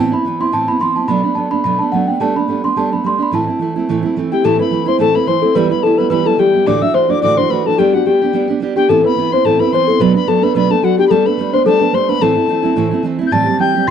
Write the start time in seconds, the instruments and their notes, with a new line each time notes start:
Already playing: steel-string acoustic guitar A2 E3, celesta A5
0.00 steel-string acoustic guitar B3 C4 E4
0.12 steel-string acoustic guitar B3 C4 E4, celesta B5
0.25 steel-string acoustic guitar E3 B3 C4 E4
0.40 steel-string acoustic guitar B3 C4 E4, celesta C6
0.52 steel-string acoustic guitar A2 E3 B3 C4 E4, celesta A5
0.68 steel-string acoustic guitar B3 C4 E4, celesta B5
0.79 steel-string acoustic guitar E3 B3 C4 E4, celesta C6
0.96 steel-string acoustic guitar B3 C4 E4, celesta A5
1.07 steel-string acoustic guitar B2 F#3 A3 B3 D4, celesta B5
1.23 steel-string acoustic guitar A3 B3 D4, celesta B5
1.35 steel-string acoustic guitar F#3 A3 B3 D4, celesta A5
1.51 steel-string acoustic guitar A3 B3 D4, celesta B5
1.64 steel-string acoustic guitar B2 F#3 A3 B3 D4, celesta B5
1.79 steel-string acoustic guitar A3 D4, celesta A5
1.83 steel-string acoustic guitar B3
1.92 steel-string acoustic guitar F#3 A3 B3 D4, celesta F#5
2.07 steel-string acoustic guitar A3 B3 D4, celesta G5
2.20 steel-string acoustic guitar G3 A3 B3 D4, celesta A5
2.36 steel-string acoustic guitar A3 B3 D4, celesta B5
2.48 steel-string acoustic guitar G3 A3 B3 D4
2.64 steel-string acoustic guitar A3 B3 D4, celesta C6
2.76 steel-string acoustic guitar G3 A3 B3 D4, celesta A5
2.92 steel-string acoustic guitar A3 B3 D4, celesta B5
3.04 steel-string acoustic guitar G3 A3 B3 D4, celesta C6
3.18 steel-string acoustic guitar A3 B3 D4, celesta C6
3.23 celesta B5
3.31 steel-string acoustic guitar A2 E3 A3 C4 E4, celesta A5
3.47 steel-string acoustic guitar A3 C4 E4
3.59 steel-string acoustic guitar E3 A3 C4 E4
3.76 steel-string acoustic guitar A3 C4 E4
3.89 steel-string acoustic guitar A2 E3 A3 C4 E4
4.03 steel-string acoustic guitar A3 C4 E4
4.16 steel-string acoustic guitar E3 A3 C4 E4
4.32 steel-string acoustic guitar A3 C4 E4, celesta G4, tin whistle G5
4.44 steel-string acoustic guitar A2 E3 A3 C4 E4, celesta A4, tin whistle A5
4.59 steel-string acoustic guitar A3 C4 E4, celesta B4, tin whistle B5
4.71 steel-string acoustic guitar E3 A3 C4 E4
4.86 steel-string acoustic guitar A3 C4 E4, celesta C5, tin whistle C6
4.99 steel-string acoustic guitar A2 E3 A3 C4 E4, celesta A4, tin whistle A5
5.14 steel-string acoustic guitar A3 C4 E4, celesta B4, tin whistle B5
5.27 steel-string acoustic guitar E3 A3 C4 E4, celesta C5, tin whistle C6
5.42 steel-string acoustic guitar A3 C4 E4, celesta A4
5.55 steel-string acoustic guitar E3 G3 B3 E4, celesta B4, tin whistle B5
5.70 steel-string acoustic guitar G3 B3 E4, celesta B4, tin whistle B5
5.83 steel-string acoustic guitar E3 G3 B3 E4, celesta A4, tin whistle A5
5.94 steel-string acoustic guitar E4, celesta A4 B4, tin whistle B5
6.00 steel-string acoustic guitar G3 B3
6.10 steel-string acoustic guitar E3 G3 B3 E4, celesta B4, tin whistle B5
6.26 steel-string acoustic guitar G3 B3 E4, celesta A4, tin whistle A5
6.37 steel-string acoustic guitar E3 G3 B3 E4, celesta G4, tin whistle G5
6.53 steel-string acoustic guitar G3 B3 E4
6.66 steel-string acoustic guitar D2 A2 E3 A3 D4 F#4, celesta D5, tin whistle D6
6.81 steel-string acoustic guitar E3 A3 D4 F#4, celesta E5, tin whistle E6
6.94 steel-string acoustic guitar E3 A3 D4 F#4, celesta C5, tin whistle C6
7.09 steel-string acoustic guitar E3 A3 D4 F#4, celesta D5, tin whistle D6
7.22 steel-string acoustic guitar D2 A2 E3 A3 D4 F#4, celesta D5, tin whistle D6
7.37 steel-string acoustic guitar E3 A3 D4 F#4, celesta C5, tin whistle C6
7.50 steel-string acoustic guitar E3 A3 D4 F#4, celesta B4, tin whistle B5
7.65 steel-string acoustic guitar E3 A3 D4 F#4, celesta A4, tin whistle A5
7.78 steel-string acoustic guitar G3 B3 D4 G4, celesta G4, tin whistle G5
7.93 steel-string acoustic guitar B3 D4 G4, celesta F#4, tin whistle F#5
8.06 steel-string acoustic guitar G3 B3 D4 G4, celesta G4, tin whistle G5
8.21 steel-string acoustic guitar B3 D4 G4
8.33 steel-string acoustic guitar G3 B3 D4 G4
8.48 steel-string acoustic guitar B3 D4 G4
8.60 steel-string acoustic guitar G3 B3 D4 G4
8.76 steel-string acoustic guitar B3 D4 G4, celesta G4, tin whistle G5
8.89 steel-string acoustic guitar A2 E3 B3 C4 E4, celesta A4, tin whistle A5
9.04 steel-string acoustic guitar B3 C4 E4, celesta B4, tin whistle B5
9.16 steel-string acoustic guitar E3 B3 C4 E4
9.32 steel-string acoustic guitar B3 C4 E4, celesta C5, tin whistle C6
9.45 steel-string acoustic guitar A2 E3 B3 C4 E4, celesta A4, tin whistle A5
9.59 steel-string acoustic guitar B3 C4 E4, celesta B4, tin whistle B5
9.72 steel-string acoustic guitar E3 B3 C4 E4, celesta C5, tin whistle C6
9.87 steel-string acoustic guitar B3 C4 E4, celesta A4
10.00 steel-string acoustic guitar B2 F#3 A3 B3 D4, celesta B4, tin whistle B5
10.14 steel-string acoustic guitar B3 D4, celesta B4, tin whistle B5
10.27 steel-string acoustic guitar F#3 A3 B3 D4, celesta A4, tin whistle A5
10.42 steel-string acoustic guitar A3 B3 D4, celesta B4, tin whistle B5
10.55 steel-string acoustic guitar B2 F#3 A3 B3 D4, celesta B4, tin whistle B5
10.70 steel-string acoustic guitar A3 B3 D4, celesta A4, tin whistle A5
10.82 steel-string acoustic guitar F#3 A3 B3 D4, celesta F#4, tin whistle F#5
10.98 steel-string acoustic guitar A3 B3 D4, celesta G4, tin whistle G5
11.07 steel-string acoustic guitar G3 A3, celesta A4, tin whistle A5 B5
11.12 steel-string acoustic guitar B3 D4
11.26 steel-string acoustic guitar A3 B3 D4, celesta B4, tin whistle B5
11.38 steel-string acoustic guitar G3 A3 B3 D4
11.53 steel-string acoustic guitar A3 B3 D4, celesta C5, tin whistle C6
11.66 steel-string acoustic guitar G3 A3 B3 D4, celesta A4, tin whistle A5
11.81 steel-string acoustic guitar A3 B3 D4
11.93 steel-string acoustic guitar G3 A3 B3 D4, celesta C5, tin whistle C6
12.09 steel-string acoustic guitar A3 B3 D4, celesta B4, tin whistle B5
12.20 steel-string acoustic guitar A2 E3 A3 C4 E4, celesta A4, tin whistle A5
12.35 steel-string acoustic guitar A3 C4 E4
12.47 steel-string acoustic guitar E3 A3 C4 E4
12.63 steel-string acoustic guitar A3 C4 E4
12.76 steel-string acoustic guitar A2 E3 A3 C4 E4
12.91 steel-string acoustic guitar A3 C4 E4
13.03 steel-string acoustic guitar E3 A3 C4 E4
13.19 steel-string acoustic guitar A3 C4 E4
13.27 tin whistle G6
13.31 steel-string acoustic guitar A2 E3 G3 C4 G4, celesta A5, tin whistle A6
13.46 steel-string acoustic guitar G3 C4 G4
13.58 steel-string acoustic guitar E3 G3 C4 G4, celesta G5, tin whistle G6
13.75 steel-string acoustic guitar G3 C4 G4
13.87 steel-string acoustic guitar A2, tin whistle C7